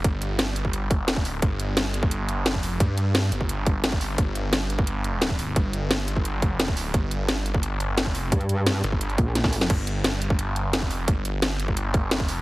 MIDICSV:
0, 0, Header, 1, 4, 480
1, 0, Start_track
1, 0, Key_signature, -2, "minor"
1, 0, Tempo, 344828
1, 61, Time_signature, 4, 2, 24, 8
1, 17283, End_track
2, 0, Start_track
2, 0, Title_t, "Wobble bass"
2, 0, Program_c, 0, 39
2, 11581, Note_on_c, 0, 43, 98
2, 12282, Note_off_c, 0, 43, 0
2, 12781, Note_on_c, 0, 34, 99
2, 13482, Note_off_c, 0, 34, 0
2, 17283, End_track
3, 0, Start_track
3, 0, Title_t, "Detuned saw bass"
3, 0, Program_c, 1, 39
3, 61, Note_on_c, 1, 31, 101
3, 1439, Note_off_c, 1, 31, 0
3, 1439, Note_on_c, 1, 29, 101
3, 1746, Note_off_c, 1, 29, 0
3, 1746, Note_on_c, 1, 27, 101
3, 1962, Note_off_c, 1, 27, 0
3, 1981, Note_on_c, 1, 31, 99
3, 3318, Note_off_c, 1, 31, 0
3, 3318, Note_on_c, 1, 30, 99
3, 3694, Note_off_c, 1, 30, 0
3, 3694, Note_on_c, 1, 29, 99
3, 3882, Note_off_c, 1, 29, 0
3, 3902, Note_on_c, 1, 43, 99
3, 4602, Note_off_c, 1, 43, 0
3, 4622, Note_on_c, 1, 31, 96
3, 5802, Note_off_c, 1, 31, 0
3, 5822, Note_on_c, 1, 31, 99
3, 7723, Note_off_c, 1, 31, 0
3, 7741, Note_on_c, 1, 31, 100
3, 9120, Note_off_c, 1, 31, 0
3, 9120, Note_on_c, 1, 29, 100
3, 9426, Note_off_c, 1, 29, 0
3, 9426, Note_on_c, 1, 27, 100
3, 9642, Note_off_c, 1, 27, 0
3, 9662, Note_on_c, 1, 31, 100
3, 10998, Note_off_c, 1, 31, 0
3, 10998, Note_on_c, 1, 30, 100
3, 11374, Note_off_c, 1, 30, 0
3, 11374, Note_on_c, 1, 29, 100
3, 11562, Note_off_c, 1, 29, 0
3, 12302, Note_on_c, 1, 31, 99
3, 12762, Note_off_c, 1, 31, 0
3, 13501, Note_on_c, 1, 31, 98
3, 14838, Note_off_c, 1, 31, 0
3, 14838, Note_on_c, 1, 30, 98
3, 15214, Note_off_c, 1, 30, 0
3, 15214, Note_on_c, 1, 29, 98
3, 15402, Note_off_c, 1, 29, 0
3, 15421, Note_on_c, 1, 31, 98
3, 16758, Note_off_c, 1, 31, 0
3, 16758, Note_on_c, 1, 30, 98
3, 17133, Note_off_c, 1, 30, 0
3, 17133, Note_on_c, 1, 29, 98
3, 17283, Note_off_c, 1, 29, 0
3, 17283, End_track
4, 0, Start_track
4, 0, Title_t, "Drums"
4, 61, Note_on_c, 9, 36, 126
4, 61, Note_on_c, 9, 42, 99
4, 200, Note_off_c, 9, 36, 0
4, 200, Note_off_c, 9, 42, 0
4, 301, Note_on_c, 9, 42, 72
4, 440, Note_off_c, 9, 42, 0
4, 541, Note_on_c, 9, 38, 126
4, 541, Note_on_c, 9, 42, 98
4, 680, Note_off_c, 9, 38, 0
4, 680, Note_off_c, 9, 42, 0
4, 781, Note_on_c, 9, 42, 72
4, 901, Note_on_c, 9, 36, 64
4, 920, Note_off_c, 9, 42, 0
4, 1021, Note_on_c, 9, 42, 98
4, 1040, Note_off_c, 9, 36, 0
4, 1160, Note_off_c, 9, 42, 0
4, 1261, Note_on_c, 9, 36, 114
4, 1261, Note_on_c, 9, 42, 70
4, 1400, Note_off_c, 9, 36, 0
4, 1400, Note_off_c, 9, 42, 0
4, 1501, Note_on_c, 9, 38, 126
4, 1501, Note_on_c, 9, 42, 96
4, 1621, Note_on_c, 9, 36, 109
4, 1640, Note_off_c, 9, 38, 0
4, 1640, Note_off_c, 9, 42, 0
4, 1741, Note_on_c, 9, 46, 78
4, 1760, Note_off_c, 9, 36, 0
4, 1880, Note_off_c, 9, 46, 0
4, 1981, Note_on_c, 9, 36, 127
4, 1981, Note_on_c, 9, 42, 96
4, 2120, Note_off_c, 9, 42, 0
4, 2121, Note_off_c, 9, 36, 0
4, 2221, Note_on_c, 9, 42, 70
4, 2361, Note_off_c, 9, 42, 0
4, 2462, Note_on_c, 9, 38, 126
4, 2462, Note_on_c, 9, 42, 98
4, 2601, Note_off_c, 9, 38, 0
4, 2601, Note_off_c, 9, 42, 0
4, 2701, Note_on_c, 9, 42, 71
4, 2821, Note_on_c, 9, 36, 114
4, 2841, Note_off_c, 9, 42, 0
4, 2942, Note_on_c, 9, 42, 95
4, 2961, Note_off_c, 9, 36, 0
4, 3081, Note_off_c, 9, 42, 0
4, 3182, Note_on_c, 9, 42, 68
4, 3321, Note_off_c, 9, 42, 0
4, 3422, Note_on_c, 9, 38, 127
4, 3422, Note_on_c, 9, 42, 94
4, 3541, Note_on_c, 9, 36, 65
4, 3561, Note_off_c, 9, 38, 0
4, 3561, Note_off_c, 9, 42, 0
4, 3662, Note_on_c, 9, 46, 79
4, 3681, Note_off_c, 9, 36, 0
4, 3801, Note_off_c, 9, 46, 0
4, 3901, Note_on_c, 9, 36, 127
4, 3901, Note_on_c, 9, 42, 91
4, 4041, Note_off_c, 9, 36, 0
4, 4041, Note_off_c, 9, 42, 0
4, 4141, Note_on_c, 9, 42, 66
4, 4281, Note_off_c, 9, 42, 0
4, 4381, Note_on_c, 9, 38, 125
4, 4381, Note_on_c, 9, 42, 93
4, 4521, Note_off_c, 9, 38, 0
4, 4521, Note_off_c, 9, 42, 0
4, 4622, Note_on_c, 9, 42, 69
4, 4741, Note_on_c, 9, 36, 64
4, 4761, Note_off_c, 9, 42, 0
4, 4862, Note_on_c, 9, 42, 91
4, 4881, Note_off_c, 9, 36, 0
4, 5001, Note_off_c, 9, 42, 0
4, 5101, Note_on_c, 9, 36, 109
4, 5101, Note_on_c, 9, 42, 65
4, 5240, Note_off_c, 9, 42, 0
4, 5241, Note_off_c, 9, 36, 0
4, 5341, Note_on_c, 9, 38, 127
4, 5341, Note_on_c, 9, 42, 92
4, 5462, Note_on_c, 9, 36, 107
4, 5480, Note_off_c, 9, 38, 0
4, 5480, Note_off_c, 9, 42, 0
4, 5581, Note_on_c, 9, 46, 78
4, 5601, Note_off_c, 9, 36, 0
4, 5720, Note_off_c, 9, 46, 0
4, 5821, Note_on_c, 9, 36, 124
4, 5821, Note_on_c, 9, 42, 91
4, 5960, Note_off_c, 9, 42, 0
4, 5961, Note_off_c, 9, 36, 0
4, 6061, Note_on_c, 9, 42, 68
4, 6201, Note_off_c, 9, 42, 0
4, 6301, Note_on_c, 9, 38, 117
4, 6301, Note_on_c, 9, 42, 88
4, 6441, Note_off_c, 9, 38, 0
4, 6441, Note_off_c, 9, 42, 0
4, 6542, Note_on_c, 9, 42, 65
4, 6662, Note_on_c, 9, 36, 106
4, 6681, Note_off_c, 9, 42, 0
4, 6781, Note_on_c, 9, 42, 91
4, 6801, Note_off_c, 9, 36, 0
4, 6920, Note_off_c, 9, 42, 0
4, 7021, Note_on_c, 9, 42, 63
4, 7161, Note_off_c, 9, 42, 0
4, 7261, Note_on_c, 9, 38, 123
4, 7261, Note_on_c, 9, 42, 90
4, 7381, Note_on_c, 9, 36, 60
4, 7400, Note_off_c, 9, 38, 0
4, 7400, Note_off_c, 9, 42, 0
4, 7501, Note_on_c, 9, 46, 78
4, 7521, Note_off_c, 9, 36, 0
4, 7640, Note_off_c, 9, 46, 0
4, 7741, Note_on_c, 9, 42, 91
4, 7742, Note_on_c, 9, 36, 118
4, 7880, Note_off_c, 9, 42, 0
4, 7881, Note_off_c, 9, 36, 0
4, 7982, Note_on_c, 9, 42, 65
4, 8121, Note_off_c, 9, 42, 0
4, 8221, Note_on_c, 9, 38, 113
4, 8221, Note_on_c, 9, 42, 88
4, 8361, Note_off_c, 9, 38, 0
4, 8361, Note_off_c, 9, 42, 0
4, 8462, Note_on_c, 9, 42, 67
4, 8582, Note_on_c, 9, 36, 60
4, 8601, Note_off_c, 9, 42, 0
4, 8702, Note_on_c, 9, 42, 87
4, 8721, Note_off_c, 9, 36, 0
4, 8841, Note_off_c, 9, 42, 0
4, 8942, Note_on_c, 9, 36, 103
4, 8942, Note_on_c, 9, 42, 61
4, 9081, Note_off_c, 9, 36, 0
4, 9081, Note_off_c, 9, 42, 0
4, 9181, Note_on_c, 9, 38, 118
4, 9181, Note_on_c, 9, 42, 93
4, 9301, Note_on_c, 9, 36, 103
4, 9321, Note_off_c, 9, 38, 0
4, 9321, Note_off_c, 9, 42, 0
4, 9421, Note_on_c, 9, 46, 85
4, 9441, Note_off_c, 9, 36, 0
4, 9561, Note_off_c, 9, 46, 0
4, 9661, Note_on_c, 9, 36, 116
4, 9661, Note_on_c, 9, 42, 91
4, 9801, Note_off_c, 9, 36, 0
4, 9801, Note_off_c, 9, 42, 0
4, 9902, Note_on_c, 9, 42, 67
4, 10041, Note_off_c, 9, 42, 0
4, 10141, Note_on_c, 9, 38, 112
4, 10141, Note_on_c, 9, 42, 92
4, 10280, Note_off_c, 9, 38, 0
4, 10280, Note_off_c, 9, 42, 0
4, 10382, Note_on_c, 9, 42, 66
4, 10501, Note_on_c, 9, 36, 102
4, 10521, Note_off_c, 9, 42, 0
4, 10621, Note_on_c, 9, 42, 91
4, 10641, Note_off_c, 9, 36, 0
4, 10760, Note_off_c, 9, 42, 0
4, 10861, Note_on_c, 9, 42, 64
4, 11001, Note_off_c, 9, 42, 0
4, 11101, Note_on_c, 9, 38, 113
4, 11101, Note_on_c, 9, 42, 89
4, 11221, Note_on_c, 9, 36, 58
4, 11241, Note_off_c, 9, 38, 0
4, 11241, Note_off_c, 9, 42, 0
4, 11342, Note_on_c, 9, 46, 85
4, 11361, Note_off_c, 9, 36, 0
4, 11481, Note_off_c, 9, 46, 0
4, 11581, Note_on_c, 9, 36, 119
4, 11582, Note_on_c, 9, 42, 95
4, 11702, Note_off_c, 9, 42, 0
4, 11702, Note_on_c, 9, 42, 38
4, 11720, Note_off_c, 9, 36, 0
4, 11822, Note_off_c, 9, 42, 0
4, 11822, Note_on_c, 9, 42, 69
4, 11961, Note_off_c, 9, 42, 0
4, 12062, Note_on_c, 9, 38, 116
4, 12062, Note_on_c, 9, 42, 97
4, 12201, Note_off_c, 9, 38, 0
4, 12201, Note_off_c, 9, 42, 0
4, 12302, Note_on_c, 9, 42, 68
4, 12421, Note_on_c, 9, 36, 60
4, 12441, Note_off_c, 9, 42, 0
4, 12542, Note_on_c, 9, 42, 96
4, 12561, Note_off_c, 9, 36, 0
4, 12662, Note_off_c, 9, 42, 0
4, 12662, Note_on_c, 9, 42, 38
4, 12781, Note_off_c, 9, 42, 0
4, 12781, Note_on_c, 9, 36, 105
4, 12781, Note_on_c, 9, 42, 65
4, 12920, Note_off_c, 9, 36, 0
4, 12921, Note_off_c, 9, 42, 0
4, 13021, Note_on_c, 9, 38, 62
4, 13021, Note_on_c, 9, 42, 95
4, 13141, Note_off_c, 9, 38, 0
4, 13141, Note_on_c, 9, 36, 100
4, 13141, Note_on_c, 9, 38, 65
4, 13160, Note_off_c, 9, 42, 0
4, 13261, Note_on_c, 9, 46, 83
4, 13280, Note_off_c, 9, 36, 0
4, 13280, Note_off_c, 9, 38, 0
4, 13381, Note_on_c, 9, 38, 85
4, 13381, Note_on_c, 9, 42, 38
4, 13400, Note_off_c, 9, 46, 0
4, 13501, Note_off_c, 9, 42, 0
4, 13501, Note_on_c, 9, 36, 122
4, 13501, Note_on_c, 9, 42, 97
4, 13501, Note_on_c, 9, 49, 77
4, 13520, Note_off_c, 9, 38, 0
4, 13640, Note_off_c, 9, 36, 0
4, 13640, Note_off_c, 9, 42, 0
4, 13640, Note_off_c, 9, 49, 0
4, 13741, Note_on_c, 9, 42, 73
4, 13881, Note_off_c, 9, 42, 0
4, 13981, Note_on_c, 9, 38, 117
4, 13981, Note_on_c, 9, 42, 96
4, 14120, Note_off_c, 9, 38, 0
4, 14120, Note_off_c, 9, 42, 0
4, 14221, Note_on_c, 9, 42, 72
4, 14341, Note_on_c, 9, 36, 109
4, 14360, Note_off_c, 9, 42, 0
4, 14461, Note_on_c, 9, 42, 97
4, 14480, Note_off_c, 9, 36, 0
4, 14600, Note_off_c, 9, 42, 0
4, 14701, Note_on_c, 9, 42, 67
4, 14841, Note_off_c, 9, 42, 0
4, 14941, Note_on_c, 9, 38, 122
4, 14941, Note_on_c, 9, 42, 100
4, 15061, Note_on_c, 9, 36, 62
4, 15080, Note_off_c, 9, 38, 0
4, 15080, Note_off_c, 9, 42, 0
4, 15181, Note_on_c, 9, 46, 78
4, 15200, Note_off_c, 9, 36, 0
4, 15320, Note_off_c, 9, 46, 0
4, 15421, Note_on_c, 9, 36, 127
4, 15421, Note_on_c, 9, 42, 99
4, 15560, Note_off_c, 9, 42, 0
4, 15561, Note_off_c, 9, 36, 0
4, 15661, Note_on_c, 9, 42, 72
4, 15800, Note_off_c, 9, 42, 0
4, 15901, Note_on_c, 9, 38, 123
4, 15901, Note_on_c, 9, 42, 99
4, 16040, Note_off_c, 9, 38, 0
4, 16040, Note_off_c, 9, 42, 0
4, 16141, Note_on_c, 9, 42, 73
4, 16261, Note_on_c, 9, 36, 67
4, 16280, Note_off_c, 9, 42, 0
4, 16381, Note_on_c, 9, 42, 100
4, 16401, Note_off_c, 9, 36, 0
4, 16520, Note_off_c, 9, 42, 0
4, 16621, Note_on_c, 9, 36, 115
4, 16621, Note_on_c, 9, 42, 69
4, 16760, Note_off_c, 9, 36, 0
4, 16760, Note_off_c, 9, 42, 0
4, 16862, Note_on_c, 9, 38, 126
4, 16862, Note_on_c, 9, 42, 100
4, 16981, Note_on_c, 9, 36, 107
4, 17001, Note_off_c, 9, 38, 0
4, 17001, Note_off_c, 9, 42, 0
4, 17101, Note_on_c, 9, 46, 78
4, 17120, Note_off_c, 9, 36, 0
4, 17240, Note_off_c, 9, 46, 0
4, 17283, End_track
0, 0, End_of_file